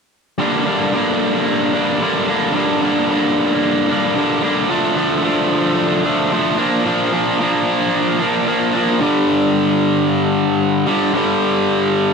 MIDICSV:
0, 0, Header, 1, 2, 480
1, 0, Start_track
1, 0, Key_signature, -2, "minor"
1, 0, Tempo, 537153
1, 349, Time_signature, 4, 2, 24, 8
1, 10844, End_track
2, 0, Start_track
2, 0, Title_t, "Overdriven electric guitar"
2, 0, Program_c, 0, 29
2, 341, Note_on_c, 0, 43, 91
2, 351, Note_on_c, 0, 50, 82
2, 359, Note_on_c, 0, 55, 87
2, 364, Note_on_c, 0, 58, 85
2, 368, Note_on_c, 0, 62, 82
2, 585, Note_off_c, 0, 62, 0
2, 588, Note_on_c, 0, 62, 65
2, 597, Note_off_c, 0, 58, 0
2, 601, Note_on_c, 0, 58, 55
2, 608, Note_off_c, 0, 55, 0
2, 611, Note_on_c, 0, 55, 51
2, 828, Note_off_c, 0, 43, 0
2, 830, Note_off_c, 0, 50, 0
2, 832, Note_on_c, 0, 43, 78
2, 840, Note_on_c, 0, 50, 83
2, 842, Note_off_c, 0, 55, 0
2, 845, Note_on_c, 0, 55, 85
2, 851, Note_off_c, 0, 58, 0
2, 854, Note_on_c, 0, 58, 82
2, 855, Note_off_c, 0, 62, 0
2, 859, Note_on_c, 0, 62, 85
2, 1546, Note_off_c, 0, 62, 0
2, 1550, Note_off_c, 0, 58, 0
2, 1550, Note_on_c, 0, 62, 59
2, 1561, Note_on_c, 0, 58, 55
2, 1569, Note_off_c, 0, 55, 0
2, 1580, Note_on_c, 0, 55, 48
2, 1783, Note_off_c, 0, 50, 0
2, 1794, Note_on_c, 0, 50, 67
2, 1795, Note_off_c, 0, 55, 0
2, 1797, Note_off_c, 0, 43, 0
2, 1802, Note_off_c, 0, 58, 0
2, 1805, Note_on_c, 0, 55, 61
2, 1813, Note_on_c, 0, 58, 72
2, 1817, Note_off_c, 0, 62, 0
2, 1820, Note_on_c, 0, 62, 74
2, 2034, Note_off_c, 0, 62, 0
2, 2038, Note_on_c, 0, 62, 63
2, 2040, Note_off_c, 0, 58, 0
2, 2051, Note_on_c, 0, 58, 60
2, 2054, Note_off_c, 0, 55, 0
2, 2065, Note_on_c, 0, 55, 49
2, 2269, Note_on_c, 0, 43, 81
2, 2271, Note_off_c, 0, 50, 0
2, 2272, Note_off_c, 0, 55, 0
2, 2280, Note_off_c, 0, 58, 0
2, 2281, Note_on_c, 0, 50, 85
2, 2283, Note_on_c, 0, 55, 92
2, 2291, Note_on_c, 0, 58, 86
2, 2292, Note_off_c, 0, 62, 0
2, 2295, Note_on_c, 0, 62, 96
2, 2514, Note_off_c, 0, 62, 0
2, 2518, Note_on_c, 0, 62, 63
2, 2521, Note_off_c, 0, 58, 0
2, 2532, Note_on_c, 0, 58, 56
2, 2533, Note_off_c, 0, 55, 0
2, 2544, Note_on_c, 0, 55, 50
2, 2747, Note_off_c, 0, 43, 0
2, 2753, Note_off_c, 0, 50, 0
2, 2757, Note_on_c, 0, 43, 78
2, 2762, Note_off_c, 0, 55, 0
2, 2763, Note_on_c, 0, 50, 82
2, 2767, Note_off_c, 0, 58, 0
2, 2773, Note_on_c, 0, 55, 88
2, 2778, Note_on_c, 0, 58, 92
2, 2781, Note_off_c, 0, 62, 0
2, 2785, Note_on_c, 0, 62, 87
2, 3473, Note_off_c, 0, 62, 0
2, 3477, Note_on_c, 0, 62, 60
2, 3481, Note_off_c, 0, 58, 0
2, 3492, Note_off_c, 0, 55, 0
2, 3492, Note_on_c, 0, 58, 57
2, 3503, Note_on_c, 0, 55, 50
2, 3704, Note_off_c, 0, 50, 0
2, 3714, Note_on_c, 0, 50, 68
2, 3716, Note_off_c, 0, 55, 0
2, 3721, Note_off_c, 0, 58, 0
2, 3723, Note_off_c, 0, 43, 0
2, 3727, Note_on_c, 0, 55, 71
2, 3732, Note_on_c, 0, 58, 68
2, 3739, Note_off_c, 0, 62, 0
2, 3742, Note_on_c, 0, 62, 77
2, 3953, Note_off_c, 0, 62, 0
2, 3956, Note_on_c, 0, 62, 65
2, 3965, Note_off_c, 0, 58, 0
2, 3976, Note_on_c, 0, 58, 61
2, 3977, Note_off_c, 0, 55, 0
2, 3988, Note_on_c, 0, 55, 51
2, 4179, Note_off_c, 0, 50, 0
2, 4190, Note_on_c, 0, 50, 93
2, 4197, Note_off_c, 0, 58, 0
2, 4198, Note_off_c, 0, 55, 0
2, 4201, Note_on_c, 0, 53, 95
2, 4210, Note_on_c, 0, 57, 100
2, 4213, Note_off_c, 0, 62, 0
2, 4216, Note_on_c, 0, 62, 88
2, 4430, Note_off_c, 0, 62, 0
2, 4434, Note_on_c, 0, 62, 71
2, 4440, Note_off_c, 0, 57, 0
2, 4450, Note_on_c, 0, 57, 59
2, 4458, Note_off_c, 0, 53, 0
2, 4462, Note_on_c, 0, 53, 52
2, 4665, Note_off_c, 0, 50, 0
2, 4675, Note_on_c, 0, 50, 76
2, 4683, Note_off_c, 0, 57, 0
2, 4684, Note_off_c, 0, 53, 0
2, 4687, Note_on_c, 0, 53, 86
2, 4693, Note_on_c, 0, 57, 85
2, 4699, Note_off_c, 0, 62, 0
2, 4703, Note_on_c, 0, 62, 87
2, 5393, Note_off_c, 0, 62, 0
2, 5396, Note_on_c, 0, 62, 65
2, 5402, Note_off_c, 0, 57, 0
2, 5413, Note_on_c, 0, 57, 58
2, 5415, Note_off_c, 0, 53, 0
2, 5426, Note_on_c, 0, 53, 53
2, 5627, Note_off_c, 0, 50, 0
2, 5637, Note_off_c, 0, 53, 0
2, 5637, Note_on_c, 0, 50, 60
2, 5647, Note_off_c, 0, 57, 0
2, 5648, Note_on_c, 0, 53, 74
2, 5658, Note_on_c, 0, 57, 74
2, 5662, Note_off_c, 0, 62, 0
2, 5665, Note_on_c, 0, 62, 75
2, 5869, Note_off_c, 0, 50, 0
2, 5870, Note_off_c, 0, 62, 0
2, 5874, Note_off_c, 0, 53, 0
2, 5874, Note_on_c, 0, 62, 78
2, 5879, Note_off_c, 0, 57, 0
2, 5887, Note_on_c, 0, 58, 80
2, 5891, Note_on_c, 0, 53, 62
2, 5903, Note_on_c, 0, 46, 63
2, 6105, Note_off_c, 0, 46, 0
2, 6115, Note_on_c, 0, 46, 77
2, 6118, Note_off_c, 0, 53, 0
2, 6126, Note_off_c, 0, 58, 0
2, 6129, Note_on_c, 0, 53, 89
2, 6135, Note_off_c, 0, 62, 0
2, 6137, Note_on_c, 0, 58, 87
2, 6146, Note_on_c, 0, 62, 101
2, 6351, Note_off_c, 0, 62, 0
2, 6362, Note_on_c, 0, 62, 65
2, 6366, Note_off_c, 0, 58, 0
2, 6377, Note_off_c, 0, 53, 0
2, 6377, Note_on_c, 0, 58, 54
2, 6388, Note_on_c, 0, 53, 51
2, 6596, Note_off_c, 0, 46, 0
2, 6606, Note_on_c, 0, 46, 76
2, 6607, Note_off_c, 0, 53, 0
2, 6617, Note_off_c, 0, 58, 0
2, 6617, Note_on_c, 0, 53, 85
2, 6625, Note_off_c, 0, 62, 0
2, 6628, Note_on_c, 0, 58, 90
2, 6636, Note_on_c, 0, 62, 84
2, 7308, Note_off_c, 0, 62, 0
2, 7319, Note_on_c, 0, 62, 66
2, 7327, Note_off_c, 0, 58, 0
2, 7336, Note_off_c, 0, 53, 0
2, 7338, Note_on_c, 0, 58, 51
2, 7347, Note_on_c, 0, 53, 50
2, 7546, Note_off_c, 0, 46, 0
2, 7556, Note_on_c, 0, 46, 67
2, 7560, Note_off_c, 0, 53, 0
2, 7565, Note_off_c, 0, 58, 0
2, 7570, Note_on_c, 0, 53, 69
2, 7575, Note_off_c, 0, 62, 0
2, 7576, Note_on_c, 0, 58, 76
2, 7586, Note_on_c, 0, 62, 78
2, 7787, Note_off_c, 0, 62, 0
2, 7797, Note_on_c, 0, 62, 66
2, 7805, Note_off_c, 0, 58, 0
2, 7815, Note_on_c, 0, 58, 57
2, 7821, Note_off_c, 0, 53, 0
2, 7832, Note_on_c, 0, 53, 48
2, 8026, Note_off_c, 0, 46, 0
2, 8027, Note_off_c, 0, 62, 0
2, 8035, Note_on_c, 0, 43, 86
2, 8036, Note_off_c, 0, 58, 0
2, 8044, Note_off_c, 0, 53, 0
2, 8050, Note_on_c, 0, 50, 92
2, 8065, Note_on_c, 0, 55, 95
2, 9697, Note_off_c, 0, 55, 0
2, 9698, Note_off_c, 0, 43, 0
2, 9705, Note_off_c, 0, 50, 0
2, 9708, Note_on_c, 0, 55, 78
2, 9726, Note_on_c, 0, 50, 63
2, 9738, Note_on_c, 0, 43, 59
2, 9936, Note_off_c, 0, 55, 0
2, 9937, Note_off_c, 0, 43, 0
2, 9946, Note_off_c, 0, 50, 0
2, 9948, Note_on_c, 0, 43, 87
2, 9964, Note_on_c, 0, 50, 95
2, 9978, Note_on_c, 0, 55, 102
2, 10844, Note_off_c, 0, 43, 0
2, 10844, Note_off_c, 0, 50, 0
2, 10844, Note_off_c, 0, 55, 0
2, 10844, End_track
0, 0, End_of_file